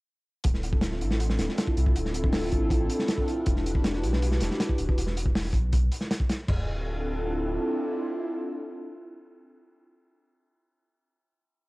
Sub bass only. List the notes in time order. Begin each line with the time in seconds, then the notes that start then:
0.45 D1
1.01 A1
1.39 D1
1.77 C2
1.96 D1
2.52 A1
3.47 E1
4.03 B1
4.41 E1
4.78 D1
4.97 E1
5.53 B1
6.48 D1